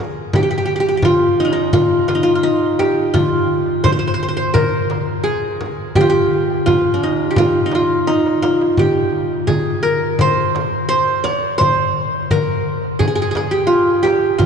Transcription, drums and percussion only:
0.17 darbuka ka
0.33 frame drum, darbuka dum
0.52 darbuka ka
1.02 frame drum, darbuka dum
1.39 darbuka ka
1.73 frame drum, darbuka dum
2.08 darbuka tek, frame drum
2.79 darbuka tek, frame drum
2.99 darbuka ka
3.14 frame drum, darbuka dum
3.33 darbuka ka
3.84 frame drum, darbuka dum
4.20 darbuka ka
4.55 frame drum, darbuka dum
4.90 darbuka tek, frame drum
5.61 frame drum
5.79 darbuka ka
5.95 frame drum, darbuka dum
6.15 darbuka ka
6.32 darbuka ka
6.49 darbuka ka
6.67 darbuka dum, frame drum
7.02 darbuka ka
7.20 darbuka ka
7.36 frame drum, darbuka dum
7.72 darbuka tek, frame drum
8.09 darbuka tek
8.27 darbuka ka
8.43 darbuka tek, frame drum
8.61 darbuka ka
8.77 frame drum, darbuka dum
8.97 darbuka ka
9.48 frame drum, darbuka dum
9.85 darbuka ka
10.19 frame drum, darbuka dum
10.55 darbuka tek, frame drum
11.25 darbuka tek, frame drum
11.43 darbuka ka
11.60 darbuka dum, frame drum
11.79 darbuka ka
12.31 frame drum, darbuka dum
12.66 darbuka ka
13.00 darbuka dum, frame drum
13.35 darbuka tek, frame drum
14.04 darbuka tek, frame drum
14.24 darbuka ka
14.40 frame drum, darbuka dum

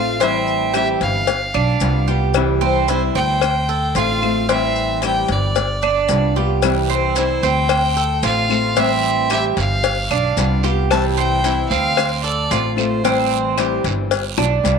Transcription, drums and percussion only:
0.21 cowbell, maracas
0.47 maracas
0.74 cowbell, claves, maracas
1.01 cowbell, maracas
1.27 cowbell, maracas
1.54 claves, maracas
1.80 cowbell, maracas
2.08 maracas
2.34 cowbell, claves, maracas
2.61 maracas
2.88 cowbell, maracas
3.15 maracas
3.41 cowbell, claves, maracas
3.69 maracas
3.95 cowbell, maracas
4.22 claves, maracas
4.49 cowbell, maracas
4.75 maracas
5.02 cowbell, claves, maracas
5.28 cowbell, maracas
5.56 cowbell, maracas
5.82 claves, maracas
6.08 cowbell, maracas
6.36 maracas
6.62 cowbell, long guiro, claves, maracas
6.89 maracas
7.16 cowbell, short guiro, maracas
7.43 short guiro, maracas
7.69 cowbell, long guiro, claves, maracas
7.96 maracas
8.23 cowbell, short guiro, maracas
8.50 short guiro, claves, maracas
8.76 cowbell, long guiro, maracas
9.03 maracas
9.30 cowbell, short guiro, claves, maracas
9.57 cowbell, short guiro, maracas
9.84 cowbell, long guiro, maracas
10.11 claves, maracas
10.37 cowbell, short guiro, maracas
10.63 short guiro, maracas
10.91 cowbell, long guiro, claves, maracas
11.17 maracas
11.44 cowbell, short guiro, maracas
11.71 short guiro, maracas
11.97 cowbell, long guiro, claves, maracas
12.24 maracas
12.51 cowbell, short guiro, maracas
12.78 short guiro, claves, maracas
13.05 cowbell, long guiro, maracas
13.31 maracas
13.58 cowbell, short guiro, claves, maracas
13.84 cowbell, short guiro, maracas
14.11 cowbell, long guiro, maracas
14.38 high bongo, claves, maracas
14.65 cowbell, short guiro, maracas

